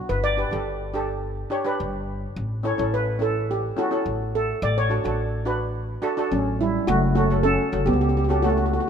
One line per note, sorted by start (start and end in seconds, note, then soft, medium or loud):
0.00 0.10 F#4 medium
0.09 0.44 G1 medium
0.09 0.23 B4 medium
0.24 1.05 D5 loud
0.37 0.46 D4 medium
0.37 0.46 G4 medium
0.37 0.47 B4 medium
0.51 1.43 G1 medium
0.51 0.77 D4 medium
0.51 0.78 G4 medium
0.51 0.78 A4 medium
0.94 1.28 D4 medium
0.94 1.28 G4 medium
0.94 1.29 A4 medium
1.50 1.59 D4 medium
1.50 1.60 G4 medium
1.50 1.60 C#5 loud
1.65 2.24 D4 medium
1.65 2.25 G4 medium
1.65 2.25 B4 medium
1.80 2.25 G1 medium
2.36 2.71 A1 loud
2.63 2.72 C#4 medium
2.63 2.73 E4 medium
2.63 2.73 A4 medium
2.63 2.91 C#5 medium
2.78 3.69 A1 loud
2.78 3.04 C#4 medium
2.78 3.04 E4 medium
2.78 3.05 A4 medium
2.94 3.20 B4 loud
3.19 3.54 C#4 medium
3.19 3.55 E4 medium
3.19 3.55 A4 medium
3.19 3.50 A4 medium
3.51 3.79 G4 medium
3.77 3.86 C#4 medium
3.77 3.86 E4 medium
3.77 4.36 F#4 loud
3.77 3.86 A4 medium
3.91 4.51 C#4 medium
3.91 4.51 E4 medium
3.91 4.52 A4 medium
4.06 4.51 A1 medium
4.35 4.61 A4 medium
4.62 4.96 A1 loud
4.62 4.78 D5 loud
4.78 5.58 C#5 loud
4.89 4.99 D4 medium
4.89 4.99 F#4 medium
4.89 4.99 A4 medium
5.04 5.96 A1 medium
5.04 5.30 D4 medium
5.04 5.30 F#4 medium
5.04 5.30 A4 medium
5.45 5.80 D4 medium
5.45 5.81 F#4 medium
5.45 5.81 B4 medium
6.02 6.11 D4 medium
6.02 6.12 F#4 medium
6.02 6.12 A4 loud
6.17 6.77 D4 medium
6.17 6.77 F#4 medium
6.17 6.78 A4 loud
6.31 6.77 A1 medium
6.31 6.59 F#3 medium
6.31 6.61 C#4 medium
6.61 6.87 G3 medium
6.61 6.87 E4 medium
6.87 7.56 F#1 loud
6.87 7.15 A3 medium
6.87 7.14 F#4 loud
7.15 7.43 A3 medium
7.15 7.25 C#4 medium
7.15 7.42 F#4 loud
7.15 7.25 F#4 medium
7.15 7.26 A4 medium
7.30 7.56 C#4 medium
7.30 7.56 F#4 medium
7.30 7.57 A4 medium
7.43 7.85 C#4 medium
7.43 7.84 A4 loud
7.72 7.89 F#1 loud
7.72 8.07 C#4 medium
7.72 8.07 F#4 medium
7.72 8.07 A4 medium
7.86 8.77 C#2 medium
7.86 7.95 B3 medium
7.86 7.92 G4 loud
7.93 8.00 G4 medium
8.01 8.08 G4 medium
8.09 8.16 G4 medium
8.17 8.23 G4 medium
8.24 8.30 G4 medium
8.29 8.38 C#4 medium
8.29 8.38 F#4 medium
8.29 8.39 G4 medium
8.29 8.39 A4 medium
8.42 8.51 A3 medium
8.42 8.77 C#4 medium
8.42 8.48 F#4 loud
8.42 8.77 F#4 medium
8.42 8.78 A4 medium
8.49 8.56 F#4 medium
8.57 8.64 F#4 medium
8.66 8.72 F#4 medium
8.73 8.79 F#4 medium
8.80 8.87 F#4 medium